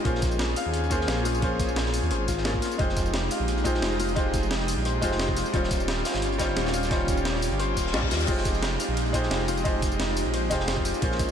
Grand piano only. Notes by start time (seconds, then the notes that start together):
0.04 A#3 C#4 F4 G#4 C5
0.90 A#3 C#4 F4 G#4 C5
1.41 A#3 C#4 F4 G#4 C5
2.45 A#3 C#4 F4 G#4
2.78 G#3 D#4 F4 G4 C5
3.64 G#3 D#4 F4 G4 C5
4.15 G#3 D#4 F4 G4 C5
5.01 G#3 D#4 F4 G4 C5
5.53 G3 C#4 D#4 F4 C5
6.38 G3 C#4 D#4 F4 C5
6.90 G3 C#4 D#4 F4 C5
7.93 G3 C#4 D#4 F4
8.27 G#3 D#4 F4 G4 C5
9.13 G#3 D#4 F4 G4 C5
9.64 G#3 D#4 F4 G4 C5
10.50 G#3 D#4 F4 G4 C5
11.01 A#3 C#4 F4 G#4 C5